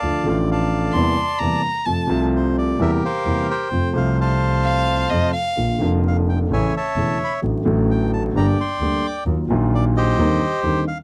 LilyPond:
<<
  \new Staff \with { instrumentName = "Violin" } { \time 4/4 \key f \mixolydian \tempo 4 = 130 r2 c'''4 bes''4 | a''8. r2. r16 | r2 f''4 ees''8 f''8~ | f''8. r2. r16 |
r1 | r1 | }
  \new Staff \with { instrumentName = "Bandoneon" } { \time 4/4 \key f \mixolydian << { a''8 f''8 a''2~ a''8 r8 | r4 c''8 d''8 e''8 f''4 g''8~ | g''8 f''8 a''2~ a''8 r8 | r4 f''8 g''8 aes''8 a''4 ces'''8 |
r4 g''8 a''8 bes''8 c'''4 d'''8 | r4 d''8 ees''4. r8 f''8 | } \\ { <d'' f''>4 <d'' f''>2~ <d'' f''>8 r8 | r2 <g' bes'>8 <bes' c''>4 c''8~ | c''4 <c'' f''>2~ <c'' f''>8 r8 | r2 <cis'' e''>8 <cis'' e''>4. |
r2 <d'' g''>8 g''4. | r4. <g' c''>2 r8 | } >> }
  \new Staff \with { instrumentName = "Grand piano" } { \clef bass \time 4/4 \key f \mixolydian <d, d f a f'>8 <a,, a, d f a f'>4. <e, c e g bes e'>8 r8 <e, c e g bes e'>8 r8 | <f, c f a f'>8 <c, c f a f'>4. <e, c e g bes e'>8 r8 <e, c e g bes e'>8 r8 | <f, c f a f'>8 <c, c f a f'>2~ <c, c f a f'>8 <f, c f a f'>8 r8 | <bes,, bes, d f bes f'>8 <f,, f, d f bes f'>4. <a,, a, cis e a e'>8 r8 <e,, e, cis e a e'>8 r8 |
<a,, a, d fis a fis'>8 <a,, a, d fis a fis'>4. <g,, g, d g bes g'>8 r8 <d, d g bes g'>8 r8 | <ees, ees ges bes f'>8 <bes,, bes, ees ges bes f'>4. <ees, d ees g c' ees'>8 r8 <ees, d ees g c' ees'>8 r8 | }
  \new Staff \with { instrumentName = "Double bass" } { \clef bass \time 4/4 \key f \mixolydian d,8 a,,4. e,8 r8 e,8 r8 | f,8 c,4. e,8 r8 e,8 r8 | f,8 c,2~ c,8 f,8 r8 | bes,,8 f,,4. a,,8 r8 e,,8 r8 |
a,,8 a,,4. g,,8 r8 d,8 r8 | ees,8 bes,,4. ees,8 r8 ees,8 r8 | }
>>